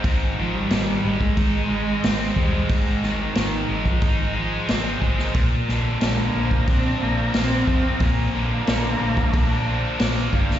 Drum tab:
HH |o---o---o---o---|o---o---o---o---|o---o---o---o---|o---o---o---o---|
SD |----o-------o---|--o-o-------o--o|--o-o-------o---|----o-------o--o|
BD |o------oo-----o-|o------oo-----o-|o------oo-----o-|o------oo-----o-|